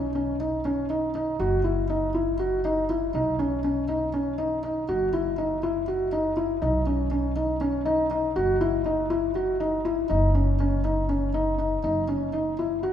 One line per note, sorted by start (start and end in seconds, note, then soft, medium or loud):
0.00 1.37 B1 medium
0.15 0.34 C#4 medium
0.40 0.59 D#4 medium
0.65 0.84 C#4 medium
0.90 1.09 D#4 medium
1.15 1.34 D#4 medium
1.39 3.10 F#1 medium
1.39 1.59 F#4 medium
1.64 1.83 E4 medium
1.90 2.09 D#4 medium
2.14 2.34 E4 medium
2.39 2.58 F#4 medium
2.65 2.84 D#4 medium
2.90 3.08 E4 medium
3.14 4.85 B1 medium
3.14 3.34 D#4 medium
3.39 3.58 C#4 medium
3.64 3.83 C#4 medium
3.88 4.08 D#4 medium
4.14 4.33 C#4 medium
4.38 4.57 D#4 medium
4.63 4.82 D#4 medium
4.89 6.59 F#1 medium
4.89 5.08 F#4 medium
5.13 5.32 E4 medium
5.38 5.57 D#4 medium
5.63 5.82 E4 medium
5.88 6.07 F#4 medium
6.12 6.32 D#4 medium
6.37 6.56 E4 medium
6.62 8.33 B1 medium
6.62 6.81 D#4 medium
6.86 7.06 C#4 medium
7.11 7.31 C#4 medium
7.36 7.56 D#4 medium
7.61 7.80 C#4 medium
7.85 8.05 D#4 medium
8.11 8.30 D#4 medium
8.36 10.07 F#1 medium
8.36 8.55 F#4 medium
8.61 8.80 E4 medium
8.86 9.05 D#4 medium
9.10 9.29 E4 medium
9.35 9.54 F#4 medium
9.60 9.79 D#4 medium
9.85 10.04 E4 medium
10.10 11.81 F#1 medium
10.10 10.29 D#4 medium
10.35 10.54 C#4 medium
10.60 10.79 C#4 medium
10.84 11.04 D#4 medium
11.09 11.28 C#4 medium
11.34 11.53 D#4 medium
11.58 11.78 D#4 medium
11.84 12.93 F#1 medium
11.84 12.03 D#4 medium
12.08 12.28 C#4 medium
12.33 12.52 D#4 medium
12.59 12.78 E4 medium
12.83 12.93 F#4 medium